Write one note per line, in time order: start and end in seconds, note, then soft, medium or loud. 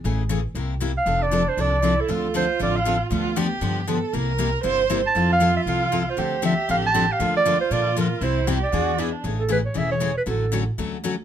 0.04 0.45 A1 medium
0.04 0.22 C#3 medium
0.04 0.22 E3 medium
0.04 0.22 A3 medium
0.04 0.23 C#4 medium
0.04 0.23 G#4 medium
0.29 0.39 C#3 medium
0.29 0.39 E3 medium
0.29 0.39 A3 medium
0.29 0.40 C#4 medium
0.29 0.40 G#4 medium
0.55 0.96 C2 medium
0.55 0.73 C3 medium
0.55 0.73 G3 medium
0.55 0.73 A#3 medium
0.55 0.73 E4 medium
0.55 0.74 G4 medium
0.80 0.90 C3 medium
0.80 0.91 G3 medium
0.80 0.91 A#3 medium
0.80 0.91 E4 medium
0.80 0.91 G4 medium
0.97 1.24 F5 medium
1.06 1.47 F1 medium
1.06 1.24 F3 soft
1.06 1.24 C4 medium
1.06 1.84 D4 medium
1.06 1.24 D4 medium
1.06 1.25 A4 medium
1.22 1.50 D5 loud
1.31 1.41 F3 medium
1.31 1.42 C4 medium
1.31 1.42 D4 medium
1.31 1.42 A4 medium
1.49 1.62 C5 medium
1.57 1.98 C2 medium
1.57 1.75 F3 medium
1.57 1.75 C4 medium
1.57 1.76 D4 medium
1.57 1.76 A4 medium
1.57 2.02 D5 loud
1.82 1.93 F3 medium
1.82 1.93 C4 medium
1.82 1.93 D4 medium
1.82 2.10 E4 medium
1.82 1.93 A4 medium
2.01 2.36 A4 medium
2.08 2.49 D2 medium
2.08 2.26 D3 medium
2.08 2.26 F3 medium
2.08 2.27 C4 medium
2.08 2.27 D4 medium
2.08 3.11 F4 medium
2.08 2.27 A4 medium
2.34 2.44 D3 medium
2.34 2.44 F3 medium
2.34 2.44 C4 medium
2.34 2.44 D4 medium
2.34 2.45 A4 medium
2.34 2.59 C5 medium
2.59 3.01 A1 medium
2.59 2.77 D3 medium
2.59 2.78 F3 medium
2.59 2.78 C4 medium
2.59 2.78 D4 medium
2.59 2.78 A4 medium
2.59 2.78 D5 medium
2.76 3.00 F5 medium
2.85 2.95 D3 medium
2.85 2.95 F3 medium
2.85 2.95 C4 medium
2.85 2.96 D4 medium
2.85 2.96 A4 medium
3.10 3.51 D2 loud
3.10 3.28 D3 medium
3.10 3.29 F3 medium
3.10 3.29 B3 medium
3.10 3.29 D4 medium
3.10 3.38 F4 medium
3.10 3.29 G4 medium
3.36 3.46 D3 medium
3.36 3.46 F3 medium
3.36 3.46 B3 medium
3.36 3.46 D4 loud
3.36 3.89 G4 medium
3.36 3.46 G4 loud
3.61 4.02 G2 medium
3.61 3.79 D3 medium
3.61 3.79 F3 medium
3.61 3.80 B3 medium
3.61 3.80 D4 medium
3.61 3.80 G4 medium
3.87 3.97 D3 medium
3.87 3.97 F3 medium
3.87 3.98 B3 medium
3.87 3.98 D4 medium
3.87 3.98 G4 medium
3.87 4.14 A4 medium
4.13 4.54 C2 medium
4.13 4.31 C3 medium
4.13 4.31 G3 medium
4.13 4.31 A#3 medium
4.13 4.31 E4 medium
4.13 4.32 G4 medium
4.13 4.63 A#4 medium
4.38 4.48 C3 medium
4.38 4.48 G3 medium
4.38 4.49 A#3 medium
4.38 4.49 E4 medium
4.38 4.49 G4 medium
4.63 5.05 G1 medium
4.63 4.81 C3 medium
4.63 4.82 G3 medium
4.63 4.82 A#3 medium
4.63 4.82 E4 medium
4.63 4.82 G4 medium
4.63 5.00 C5 loud
4.90 4.99 C3 medium
4.90 5.00 G3 medium
4.90 5.00 A#3 medium
4.90 5.00 E4 medium
4.90 5.00 G4 medium
5.07 5.29 A5 loud
5.15 5.56 F2 medium
5.15 5.33 F3 medium
5.15 5.33 C4 medium
5.15 5.33 E4 medium
5.15 6.19 F4 loud
5.15 5.34 A4 medium
5.32 5.55 F5 loud
5.40 5.50 F3 medium
5.40 5.51 C4 medium
5.40 5.51 E4 medium
5.40 5.51 A4 medium
5.57 5.61 E5 medium
5.65 6.07 C2 medium
5.65 5.84 F3 medium
5.65 5.85 C4 medium
5.65 5.85 E4 medium
5.65 5.85 A4 medium
5.65 6.11 F5 medium
5.92 6.02 F3 medium
5.92 6.02 C4 medium
5.92 6.02 E4 medium
5.92 6.02 A4 medium
6.09 6.45 C5 medium
6.17 6.58 D2 medium
6.17 6.35 D3 medium
6.17 6.35 F3 medium
6.17 6.35 C4 medium
6.17 6.35 D4 medium
6.17 7.22 G4 medium
6.17 6.35 A4 medium
6.42 6.52 D3 medium
6.42 6.53 F3 medium
6.42 6.53 C4 medium
6.42 6.53 D4 medium
6.42 6.53 A4 medium
6.42 6.68 E5 medium
6.69 7.10 A1 medium
6.69 6.86 D3 medium
6.69 6.87 F3 medium
6.69 6.87 C4 medium
6.69 6.87 D4 medium
6.69 6.87 A4 medium
6.69 6.76 F5 medium
6.86 7.14 A5 medium
6.94 7.04 D3 medium
6.94 7.04 F3 medium
6.94 7.04 C4 medium
6.94 7.04 D4 medium
6.94 7.05 A4 medium
7.12 7.36 F5 medium
7.19 7.60 D2 medium
7.19 7.38 D3 medium
7.19 7.38 F3 medium
7.19 7.38 A#3 medium
7.19 7.38 D4 medium
7.19 8.24 F4 medium
7.19 7.38 A4 medium
7.37 7.59 D5 loud
7.46 7.55 D3 medium
7.46 7.55 F3 medium
7.46 7.56 A#3 medium
7.46 7.56 D4 loud
7.46 7.56 A4 loud
7.61 7.74 C5 medium
7.71 8.12 A#2 medium
7.71 7.89 D3 medium
7.71 7.89 F3 medium
7.71 7.89 A#3 medium
7.71 7.89 D4 medium
7.71 7.89 A4 medium
7.71 7.97 D5 medium
7.96 8.06 D3 medium
7.96 8.06 F3 medium
7.96 8.07 A#3 medium
7.96 8.07 D4 medium
7.96 8.07 A4 medium
7.96 8.25 A#4 medium
8.21 8.62 C2 medium
8.21 8.39 C3 medium
8.21 8.40 G3 medium
8.21 8.40 C4 medium
8.21 8.40 E4 medium
8.21 8.49 E4 medium
8.21 8.40 G4 medium
8.21 8.48 C5 medium
8.47 8.57 C3 medium
8.47 8.57 G3 medium
8.47 8.57 C4 medium
8.47 8.58 E4 medium
8.47 8.73 G4 medium
8.47 8.58 G4 medium
8.63 9.10 D5 medium
8.72 9.14 E2 medium
8.72 8.91 E3 medium
8.72 8.91 B3 medium
8.72 8.91 D4 medium
8.72 9.00 F#4 medium
8.72 8.91 G#4 medium
8.98 9.08 E3 medium
8.98 9.09 B3 medium
8.98 9.09 D4 medium
8.98 9.13 E4 medium
8.98 9.09 G#4 medium
9.12 9.24 D4 medium
9.24 9.65 A1 medium
9.24 9.42 C#3 soft
9.24 9.42 E3 medium
9.24 9.42 A3 medium
9.24 9.42 C#4 medium
9.24 9.42 G#4 medium
9.40 9.50 A4 medium
9.48 9.59 C#3 medium
9.48 9.59 E3 medium
9.48 9.59 A3 medium
9.48 9.60 C#4 medium
9.48 9.60 G#4 medium
9.48 9.58 B4 medium
9.66 9.79 C#5 medium
9.74 10.16 E1 medium
9.74 9.93 C#3 medium
9.74 9.93 E3 medium
9.74 9.93 A3 medium
9.74 9.93 C#4 medium
9.74 9.93 G#4 medium
9.74 9.91 E5 medium
9.92 10.14 C#5 medium
10.00 10.11 C#3 medium
10.00 10.11 E3 medium
10.00 10.11 A3 medium
10.00 10.11 C#4 medium
10.00 10.11 G#4 medium
10.18 10.22 B4 medium
10.26 10.68 A1 loud
10.26 10.44 D3 medium
10.26 10.45 F#3 medium
10.26 10.45 A3 medium
10.26 10.45 C#4 medium
10.26 10.45 F#4 medium
10.26 10.65 A4 medium
10.52 10.62 D3 medium
10.52 10.62 F#3 medium
10.52 10.63 A3 medium
10.52 10.63 C#4 medium
10.52 10.63 F#4 medium
10.78 11.19 D2 medium
10.78 10.96 D3 medium
10.78 10.96 F#3 medium
10.78 10.96 A3 medium
10.78 10.97 C#4 medium
10.78 10.97 F#4 medium
11.04 11.14 D3 medium
11.04 11.14 F#3 medium
11.04 11.14 A3 medium
11.04 11.14 C#4 medium
11.04 11.14 F#4 medium